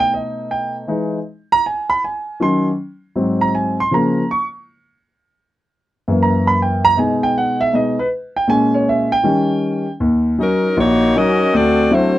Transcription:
Already playing: grand piano B2 A3 D#4
0.00 grand piano G5
0.14 grand piano D#5
0.51 grand piano G5
0.88 grand piano E3 G#3 D#4
1.52 grand piano A#5
1.66 grand piano G#5
1.90 grand piano B5
2.04 grand piano G#5
2.40 grand piano D#3 F#3 C#4 C6
3.16 grand piano G#2 F#3 C4
3.41 grand piano A#5
3.55 grand piano G#5
3.80 grand piano C6
3.91 grand piano C#3 F3 A#3 A#5
4.31 grand piano C#6
6.08 grand piano F#2 E3 A#3
6.23 grand piano A#5
6.47 grand piano B5
6.62 grand piano G5
6.85 grand piano A#5
6.97 grand piano B2 G#3 D#4 G#5
7.23 grand piano G5
7.38 grand piano F#5
7.61 grand piano E5
7.73 grand piano B2 G#3 D#4 D#5
7.99 grand piano B4
8.36 grand piano G5
8.47 grand piano A#2 G#3 C#4 G#5
8.74 grand piano C#5
8.89 grand piano E5
9.12 grand piano G5
9.23 grand piano D#3 G3 C#4
10.00 grand piano D#2
10.38 grand piano F#3 C#4 D#4, saxophone section F#3 C#4 D#4 A#4
10.77 grand piano A#1, saxophone section A#3 D#4 F#4 C#5
11.16 grand piano F#3 C#4 D#4, saxophone section C#4 F#4 A#4 D#5
11.54 grand piano D2, saxophone section C4 F#4 A4 D5
11.91 grand piano F#3 C4 D4 E4, saxophone section A3 E4 F#4 C5

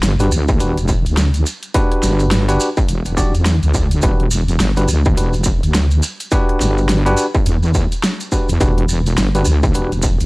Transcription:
0.03 wobble bass G1, snare, closed hi-hat, maracas
0.19 tine electric piano D4 F#4 G4 B4, closed hi-hat, maracas
0.32 wobble bass D2, maracas
0.48 kick, maracas
0.60 wobble bass E1, tine electric piano D4 F#4 G4 B4, closed hi-hat, maracas
0.77 closed hi-hat, maracas
0.88 kick, maracas
1.06 wobble bass D2, closed hi-hat, maracas
1.17 snare, closed hi-hat, maracas
1.34 closed hi-hat, maracas
1.46 maracas
1.63 closed hi-hat, maracas
1.74 tine electric piano D4 F#4 G4 B4, kick, closed hi-hat, maracas
1.92 cross-stick, closed hi-hat
2.03 wobble bass G1, snare, maracas
2.19 closed hi-hat, maracas
2.31 snare, closed hi-hat, maracas
2.49 tine electric piano D4 F#4 G4 B4, closed hi-hat, maracas
2.60 maracas
2.77 kick, maracas
2.88 wobble bass E1, closed hi-hat, maracas
3.05 closed hi-hat, maracas
3.17 tine electric piano D4 F#4 G4 D5, kick, maracas
3.34 wobble bass E2, closed hi-hat, maracas
3.46 snare, closed hi-hat, maracas
3.63 wobble bass D2, closed hi-hat, maracas
3.74 kick, maracas
3.91 closed hi-hat, maracas
4.02 wobble bass E1, tine electric piano D4 F#4 G4 B4, kick, closed hi-hat, maracas
4.20 closed hi-hat
4.31 maracas
4.48 closed hi-hat, maracas
4.59 wobble bass G1, snare, closed hi-hat, maracas
4.76 tine electric piano D4 F#4 G4 B4, closed hi-hat, maracas
4.88 wobble bass D2, maracas
5.05 kick, maracas
5.17 wobble bass E1, tine electric piano D4 F#4 G4 B4, closed hi-hat, maracas
5.33 closed hi-hat, maracas
5.44 kick, maracas
5.63 wobble bass D2, closed hi-hat, maracas
5.74 snare, closed hi-hat, maracas
5.91 closed hi-hat, maracas
6.03 maracas
6.20 closed hi-hat, maracas
6.31 tine electric piano D4 F#4 G4 B4, kick, closed hi-hat, maracas
6.49 cross-stick, closed hi-hat
6.60 wobble bass G1, snare, maracas
6.78 maracas
6.89 snare, closed hi-hat, maracas
7.06 tine electric piano D4 F#4 G4 B4, closed hi-hat, maracas
7.17 maracas
7.35 kick, maracas
7.46 wobble bass E2, closed hi-hat, maracas
7.63 maracas
7.74 kick, maracas
7.92 closed hi-hat, maracas
8.03 snare, closed hi-hat, maracas
8.20 closed hi-hat, maracas
8.32 tine electric piano D4 F#4 G4 B4, kick, maracas
8.49 wobble bass E2, closed hi-hat, maracas
8.60 wobble bass E1, tine electric piano D4 F#4 G4 B4, kick, closed hi-hat, maracas
8.78 closed hi-hat
8.89 maracas
9.06 closed hi-hat, maracas
9.17 wobble bass G1, snare, closed hi-hat, maracas
9.35 tine electric piano D4 F#4 G4 B4, closed hi-hat, maracas
9.45 wobble bass D2, maracas
9.63 kick, maracas
9.74 wobble bass E1, tine electric piano D4 F#4 G4 B4, closed hi-hat, maracas
9.92 closed hi-hat, maracas
10.02 kick, maracas
10.20 wobble bass D2, closed hi-hat, maracas

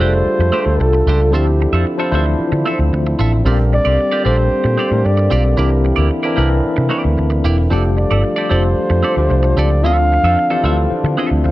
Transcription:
Already playing: french horn section D3 G3 A3 F4, tine electric piano A4
0.00 picked electric bass F1, tine electric piano G3 D4 F4 G#4, clean electric guitar A3 D4 G4 C5, flugelhorn C5
0.06 tine electric piano A4
0.14 muted clean electric guitar stroke
0.26 muted picked electric bass stroke
0.39 picked electric bass F2, muted clean electric guitar stroke
0.52 clean electric guitar A3 D4 G4 C5
0.64 picked electric bass D2, tine electric piano G3 D4 F4 A4, muted clean electric guitar stroke
0.79 picked electric bass C2, flugelhorn A4, muted clean electric guitar stroke
0.93 muted clean electric guitar stroke
1.07 picked electric bass C#2, clean electric guitar A3 D4 G4 C5
1.22 muted clean electric guitar stroke
1.31 picked electric bass D2, tine electric piano F3 D4 E4 C5, french horn section F3 C4 E4, clean electric guitar C4 F4 A4, flugelhorn G4
1.35 clean electric guitar E5
1.47 muted clean electric guitar stroke
1.61 muted clean electric guitar stroke
1.73 picked electric bass F2, clean electric guitar C4 F4 A4 E5
1.86 muted clean electric guitar stroke
1.97 tine electric piano F3 D4 E4 C5, clean electric guitar F4 A4 E5
2.01 clean electric guitar C4
2.11 picked electric bass D2, tine electric piano E3 D4 E4 C5, clean electric guitar C4 F4 A4
2.15 tine electric piano F3, clean electric guitar E5
2.26 muted clean electric guitar stroke
2.39 muted picked electric bass stroke
2.52 picked electric bass D3, muted clean electric guitar stroke
2.66 clean electric guitar C4 F4 A4 E5
2.79 picked electric bass D2, muted clean electric guitar stroke
2.92 picked electric bass D2, muted clean electric guitar stroke
3.07 muted clean electric guitar stroke
3.19 picked electric bass A1, clean electric guitar C4 F4 A4 E5
3.33 muted clean electric guitar stroke
3.44 picked electric bass A#1, french horn section D3 A#3 G4, tine electric piano G3 C4 C#4 A#4, clean electric guitar C4 F4 G4 D5
3.52 tine electric piano D4
3.59 muted clean electric guitar stroke
3.73 flugelhorn D5, muted clean electric guitar stroke
3.85 picked electric bass C2, clean electric guitar C4 F4 G4 D5
3.99 muted clean electric guitar stroke
4.12 clean electric guitar C4 F4 G4 D5
4.24 picked electric bass A#1, tine electric piano G3 C4 D4 A4, clean electric guitar C4 F4 G4 D5, flugelhorn C5
4.37 muted clean electric guitar stroke
4.52 muted picked electric bass stroke
4.64 picked electric bass A#2, muted clean electric guitar stroke
4.78 clean electric guitar C4 F4 G4 D5
4.90 picked electric bass A2, tine electric piano G3 C4 D4 A#4, muted clean electric guitar stroke
5.05 picked electric bass G2, flugelhorn D5, muted clean electric guitar stroke
5.17 muted clean electric guitar stroke
5.31 picked electric bass B1, clean electric guitar C4 F4 G4 D5
5.45 muted clean electric guitar stroke
5.57 picked electric bass C2, french horn section D3 E4, tine electric piano E3 C4 D4 A#4, clean electric guitar A#3 E4 G4 D5, flugelhorn G4
5.70 muted clean electric guitar stroke
5.85 muted clean electric guitar stroke
5.96 picked electric bass D2, clean electric guitar A#3 E4 G4 D5
6.10 muted clean electric guitar stroke
6.23 tine electric piano E3 C4 D4 A#4, clean electric guitar A#3 E4 G4 D5
6.36 picked electric bass C2, tine electric piano E3 C4 D4 A#4, clean electric guitar A#3 E4 G4 D5
6.50 muted clean electric guitar stroke
6.65 muted picked electric bass stroke
6.77 picked electric bass C3, muted clean electric guitar stroke
6.89 clean electric guitar A#3 E4 G4 D5
7.04 picked electric bass D2, muted clean electric guitar stroke
7.17 picked electric bass D2, muted clean electric guitar stroke
7.30 muted clean electric guitar stroke
7.44 picked electric bass E1, clean electric guitar A#3 E4 G4 D5
7.58 muted clean electric guitar stroke
7.70 picked electric bass F1, tine electric piano F3 A3 D4 G4, french horn section G3 A3 F4, clean electric guitar C4 G4 A4 D5
7.84 muted clean electric guitar stroke
7.97 flugelhorn D5, muted clean electric guitar stroke
8.11 picked electric bass G1, clean electric guitar C4 G4 A4 D5
8.23 muted clean electric guitar stroke
8.36 clean electric guitar C4 G4 A4 D5
8.49 picked electric bass F1, tine electric piano F3 A3 D4 G4, clean electric guitar C4 G4 A4 D5, flugelhorn C5
8.63 muted clean electric guitar stroke
8.90 picked electric bass F2, muted clean electric guitar stroke
9.03 clean electric guitar C4 G4 A4 D5
9.16 picked electric bass D2, tine electric piano F3 A3 D4 G4, muted clean electric guitar stroke
9.29 picked electric bass C2, muted clean electric guitar stroke
9.43 muted clean electric guitar stroke
9.57 picked electric bass C#2, clean electric guitar C4 G4 A4 D5, flugelhorn D5
9.70 muted clean electric guitar stroke
9.82 picked electric bass D2, tine electric piano F3 C4 D4 F4, french horn section F3 C4 D4, clean electric guitar C4 F4 A4 E5, flugelhorn F5
9.98 muted clean electric guitar stroke
10.12 muted clean electric guitar stroke
10.24 picked electric bass F2, clean electric guitar C4 F4 A4 E5
10.38 muted clean electric guitar stroke
10.50 tine electric piano E3 C4 D4 G4, clean electric guitar C4 F4 A4 E5
10.63 picked electric bass D2, clean electric guitar C4 F4 A4 E5, tine electric piano C4 D4 E4 F4 A4
10.78 muted clean electric guitar stroke
10.90 tine electric piano C5
11.04 picked electric bass D3, muted clean electric guitar stroke
11.17 clean electric guitar C4 F4 A4 E5
11.27 tine electric piano E5, muted clean electric guitar stroke
11.31 picked electric bass D2
11.44 picked electric bass D2, tine electric piano E4 C5 F5, muted clean electric guitar stroke

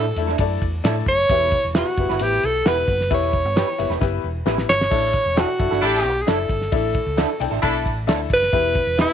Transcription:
Already playing: fingered electric bass A2, upright piano A2, alto saxophone A4
0.16 fingered electric bass E2, upright piano A3 D4 E4 A4 E5, ride
0.27 clean electric guitar D4 E4 A4, snare
0.38 fingered electric bass F#2, upright piano A3 D4 E4 A4 D5, kick, ride
0.62 fingered electric bass E2, kick, ride
0.84 fingered electric bass A2, upright piano A3 D4 E4 A4 D5, clean electric guitar D4 E4 A4, snare, ride
1.06 fingered electric bass F#1, alto saxophone C#5, kick, ride
1.29 fingered electric bass E1, upright piano E3 B3 E4 G4 B4 E5, kick, ride
1.51 kick, ride
1.64 fingered electric bass E1
1.74 upright piano B3 E4 G4 B4 E5, clean electric guitar E4 G4 B4, alto saxophone F#4, snare, ride
1.97 fingered electric bass F#1, upright piano B3 E4 G4 B4 E5, kick, ride
2.09 fingered electric bass G1, clean electric guitar E4 G4 B4, snare
2.19 fingered electric bass A1, upright piano B3 E4 G4 B4 E5, alto saxophone G4, ride
2.43 fingered electric bass B1, alto saxophone A4, ride
2.65 fingered electric bass E1, upright piano B3 E4 G4 B4 F#5, clean electric guitar E4 G4 B4, alto saxophone B4, snare, ride
2.88 fingered electric bass F#1, kick, ride
3.01 snare
3.10 fingered electric bass E1, upright piano E3 B3 E4 G4 B4 E5, alto saxophone C#5, kick, ride
3.33 kick, ride
3.45 fingered electric bass G1
3.56 upright piano B3 E4 G4 B4 G5, clean electric guitar E4 G4 B4, snare, ride
3.78 fingered electric bass F#1, upright piano B3 E4 G4 B4 E5, ride
3.90 fingered electric bass E1, clean electric guitar E4 G4 B4, snare
4.01 fingered electric bass F#1, upright piano B3 E4 G4 B4 E5, kick, snare
4.24 fingered electric bass E1
4.46 fingered electric bass A1, upright piano B3 E4 G4 B4 E5, clean electric guitar E4 G4 B4, snare
4.58 snare
4.69 fingered electric bass G1, alto saxophone C#5, snare
4.81 snare
4.90 fingered electric bass A1, upright piano A2 D4 E4 A4 D5 E5, kick, splash
5.13 kick, ride
5.25 fingered electric bass E1
5.36 upright piano D4 E4 A4 D5 G5, clean electric guitar D4 E4 A4, alto saxophone F#4, snare, ride
5.59 fingered electric bass F#1, upright piano D4 E4 A4 D5 E5, kick, ride
5.71 fingered electric bass G1, clean electric guitar D4 E4 A4, snare
5.81 fingered electric bass A1, horn section D4 E4 A4, upright piano D4 E4 A4 D5 E5, alto saxophone G4, ride
6.04 fingered electric bass B1, ride
6.22 alto saxophone G#4
6.27 fingered electric bass F#1, clean electric guitar D4 E4 A4, upright piano D4 E4 A4 D5 E5, alto saxophone A4, snare, ride
6.49 fingered electric bass G1, kick, ride
6.61 snare
6.72 fingered electric bass A1, upright piano A2 D4 E4 A4 D5 E5, alto saxophone A4, kick, ride
6.94 kick, ride
7.06 fingered electric bass C#2
7.17 clean electric guitar D4 E4 A4, upright piano D4 E4 A4 D5 F#5, snare, ride
7.40 fingered electric bass B1, upright piano D4 E4 A4 D5 G5, ride
7.51 fingered electric bass A1, clean electric guitar D4 E4 A4
7.62 fingered electric bass B1, horn section D4 E4 A4, upright piano D4 E4 A4 D5 E5, kick, ride
7.85 fingered electric bass A1, kick, ride
8.07 fingered electric bass D2, upright piano D4 E4 A4 D5 E5, clean electric guitar D4 E4 A4, snare, ride
8.30 fingered electric bass F#1, alto saxophone B4, kick, ride
8.43 snare
8.52 fingered electric bass E1, upright piano E3 B3 E4 G4 B4 E5, kick, ride
8.75 kick, ride
8.87 fingered electric bass E1
8.97 upright piano B3 E4 G4 B4 E5, clean electric guitar E4 G4 B4, alto saxophone E4, snare, ride

